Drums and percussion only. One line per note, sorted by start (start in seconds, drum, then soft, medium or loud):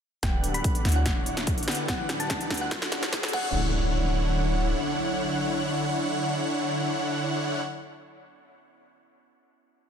0.23 kick medium
0.23 snare soft
0.23 closed hi-hat medium
0.44 closed hi-hat medium
0.54 closed hi-hat medium
0.64 kick medium
0.64 closed hi-hat medium
0.75 closed hi-hat medium
0.85 snare medium
0.85 closed hi-hat soft
0.89 closed hi-hat medium
0.92 closed hi-hat medium
1.06 kick medium
1.06 snare medium
1.06 closed hi-hat medium
1.26 closed hi-hat medium
1.37 snare medium
1.37 closed hi-hat medium
1.47 kick medium
1.47 closed hi-hat medium
1.58 closed hi-hat soft
1.63 closed hi-hat medium
1.68 snare medium
1.68 closed hi-hat soft
1.71 closed hi-hat medium
1.75 closed hi-hat medium
1.88 kick medium
1.88 snare medium
1.88 closed hi-hat medium
2.09 snare medium
2.09 closed hi-hat medium
2.20 closed hi-hat medium
2.30 kick medium
2.30 snare medium
2.30 closed hi-hat medium
2.41 closed hi-hat medium
2.50 snare medium
2.50 closed hi-hat soft
2.54 closed hi-hat medium
2.57 closed hi-hat medium
2.71 kick medium
2.71 snare medium
2.71 closed hi-hat medium
2.82 snare medium
2.92 snare medium
2.92 closed hi-hat medium
3.03 snare medium
3.03 closed hi-hat medium
3.13 kick medium
3.13 snare loud
3.13 closed hi-hat medium
3.23 snare medium
3.23 closed hi-hat medium
3.28 closed hi-hat medium
3.33 kick loud
3.33 crash medium